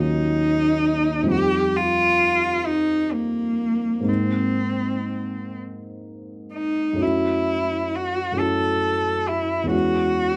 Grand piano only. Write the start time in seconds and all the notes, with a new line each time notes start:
Already playing: D#2 F#3 C#4 D#4
0.00 F4
1.23 F2 G3 C4
1.28 D#4 F4
4.00 G#2 A#3 C4 D#4
6.93 F#2 A3 C#4
6.98 E4 F#4
8.32 F#2 A3 C#4 E4
8.38 F#4
9.64 E2 G#3 C#4
9.68 E4 F#4